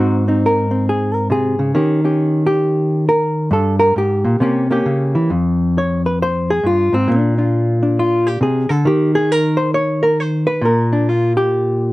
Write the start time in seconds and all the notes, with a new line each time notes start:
Already playing: G#2 C4 D#4 F#4
0.28 C4 D#4
0.46 A#4
0.71 C4
0.89 G#4
1.14 A#4
1.30 C3 G#4
1.59 C#3
1.75 D#3 C#4 G4
2.05 C#4 G4
2.47 G4
3.09 A#4
3.51 G2 A4
3.79 A#4
3.96 G#2 G4
4.24 A#2
4.40 C3 A#3 C#4 G4
4.71 A#3 C#4 G4
4.86 C#3
5.15 E3
5.30 F2
5.78 C#5
6.06 B4
6.22 C5
6.50 G#4
6.63 G2 F4
6.93 G#2 C4
7.08 A#2 D4
7.38 D4 F4
7.83 D4
7.99 F4
8.27 G4
8.41 C3 G#4
8.69 D3 A4
8.85 D#3 G4
9.15 G#4
9.32 A#4
9.57 C5
9.74 C#5
10.03 A#4
10.20 C5
10.47 B4
10.61 A#2 A#4
10.93 D4
11.09 F4
11.37 G4